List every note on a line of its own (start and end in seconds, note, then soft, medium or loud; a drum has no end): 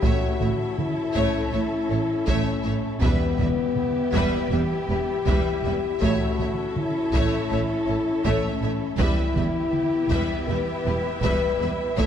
0.00 0.11 A1 medium
0.00 0.11 A2 medium
0.00 0.38 A3 medium
0.00 3.02 C#4 medium
0.00 2.99 E4 medium
0.00 0.78 F#4 medium
0.00 3.02 A4 medium
0.00 2.99 E5 medium
0.00 0.38 E5 medium
0.00 taiko medium
0.05 0.39 C#5 medium
0.40 0.49 A1 medium
0.40 0.48 A2 medium
0.40 0.49 A3 soft
0.40 0.48 C#5 soft
0.40 0.49 E5 medium
0.40 taiko mid soft
0.77 1.51 E4 medium
0.77 taiko mid medium
1.14 1.24 A1 medium
1.14 1.24 A2 medium
1.14 1.51 A3 medium
1.14 1.50 C#5 medium
1.14 1.49 E5 medium
1.14 taiko medium
1.52 1.61 A1 medium
1.52 1.61 A2 medium
1.52 1.61 A3 medium
1.52 2.26 E4 medium
1.52 1.60 C#5 medium
1.52 1.60 E5 medium
1.90 1.98 A1 medium
1.90 1.99 A2 medium
1.90 1.98 A3 soft
1.90 1.98 A4 soft
1.90 1.98 C#5 medium
2.26 2.36 A1 medium
2.26 2.35 A2 medium
2.26 2.62 A3 medium
2.26 3.00 C#4 medium
2.26 2.62 C#5 medium
2.26 2.61 E5 medium
2.26 taiko medium
2.63 2.73 A1 medium
2.63 2.73 A2 medium
2.63 2.72 A3 medium
2.63 2.74 C#5 medium
2.63 2.71 E5 medium
3.00 3.10 E1 medium
3.00 3.09 E2 medium
3.00 4.11 E2 medium
3.00 3.36 G3 medium
3.00 4.52 B3 loud
3.00 6.01 B3 medium
3.00 8.95 E4 medium
3.00 6.01 G4 medium
3.00 3.36 B4 medium
3.00 8.94 E5 medium
3.00 3.36 E5 medium
3.00 taiko medium
3.38 3.47 E1 medium
3.38 3.47 E2 medium
3.38 3.46 G3 medium
3.38 3.48 B4 medium
3.38 3.46 E5 medium
3.38 taiko mid soft
3.77 taiko mid medium
4.13 4.23 E1 medium
4.13 4.23 E2 medium
4.13 4.49 G3 medium
4.13 4.50 B4 medium
4.13 4.49 E5 medium
4.13 taiko medium
4.51 4.61 E1 medium
4.51 4.61 E2 medium
4.51 4.60 G3 medium
4.51 6.01 G4 loud
4.51 4.60 B4 soft
4.51 4.59 E5 medium
4.89 4.98 E1 medium
4.89 5.00 E2 medium
4.89 4.98 G3 medium
4.89 4.99 G4 medium
4.89 4.97 B4 medium
5.26 5.35 E1 medium
5.26 5.37 E2 medium
5.26 5.62 G3 medium
5.26 5.63 B4 medium
5.26 5.61 E5 medium
5.26 taiko medium
5.63 5.73 E1 medium
5.63 5.74 E2 medium
5.63 5.72 G3 medium
5.63 5.74 B4 medium
5.63 5.71 E5 medium
6.01 6.10 A1 medium
6.01 6.12 A2 medium
6.01 6.36 A3 medium
6.01 8.99 C#4 medium
6.01 6.76 F#4 medium
6.01 8.99 A4 medium
6.01 6.37 C#5 medium
6.01 6.36 E5 medium
6.01 taiko medium
6.39 6.48 A1 medium
6.39 6.48 A2 medium
6.39 6.47 A3 medium
6.39 6.50 C#5 soft
6.39 6.48 E5 medium
6.39 taiko mid soft
6.76 7.35 E4 loud
6.76 taiko mid medium
7.13 7.22 A1 medium
7.13 7.22 A2 medium
7.13 7.48 A3 medium
7.13 7.49 C#5 medium
7.13 7.48 E5 medium
7.13 taiko medium
7.50 7.59 A1 medium
7.50 7.59 A2 medium
7.50 7.59 A3 medium
7.50 8.24 E4 medium
7.50 7.60 C#5 medium
7.50 7.58 E5 medium
7.87 7.96 A1 medium
7.87 7.96 A2 medium
7.87 7.96 A3 medium
7.87 7.97 A4 medium
7.87 7.95 C#5 medium
8.24 8.33 A1 medium
8.24 8.32 A2 medium
8.24 8.60 A3 medium
8.24 8.99 C#4 loud
8.24 8.60 C#5 medium
8.24 8.60 E5 medium
8.24 taiko medium
8.61 8.69 A1 medium
8.61 8.71 A2 medium
8.61 8.71 A3 medium
8.61 8.70 C#5 medium
8.61 8.71 E5 medium
8.97 9.06 E1 medium
8.97 9.07 E2 medium
8.97 9.34 G3 medium
8.97 11.98 B3 medium
8.97 10.46 E4 loud
8.97 12.06 E4 medium
8.97 11.98 G4 medium
8.97 9.33 B4 medium
8.97 9.34 E5 medium
8.97 12.06 E5 medium
8.97 taiko medium
9.36 9.44 E1 medium
9.36 9.44 E2 medium
9.36 9.45 G3 medium
9.36 9.44 B4 soft
9.36 9.45 E5 medium
9.36 taiko mid soft
9.73 taiko mid medium
10.10 10.18 E1 medium
10.10 10.19 E2 medium
10.10 10.46 G3 medium
10.10 10.47 B4 medium
10.10 10.47 E5 medium
10.10 taiko medium
10.49 10.57 E1 medium
10.49 10.57 E2 medium
10.49 10.57 G3 medium
10.49 11.98 B4 loud
10.49 10.58 B4 medium
10.49 10.57 E5 medium
10.86 10.94 E1 medium
10.86 10.94 E2 medium
10.86 10.95 G3 medium
10.86 10.95 G4 medium
10.86 10.94 B4 medium
11.23 11.31 E1 medium
11.23 11.31 E2 medium
11.23 11.58 G3 medium
11.23 11.58 B4 medium
11.23 11.58 E5 medium
11.23 taiko medium
11.60 11.69 E1 medium
11.60 11.68 E2 medium
11.60 11.69 G3 medium
11.60 11.69 B4 medium
11.60 11.69 E5 medium
11.97 12.05 A1 medium
11.97 12.06 A2 medium
11.97 12.06 A3 medium
11.97 12.06 C#4 medium
11.97 12.06 A4 medium
11.97 12.06 A4 loud
11.97 12.06 C#5 medium
11.97 12.06 E5 medium
11.97 taiko medium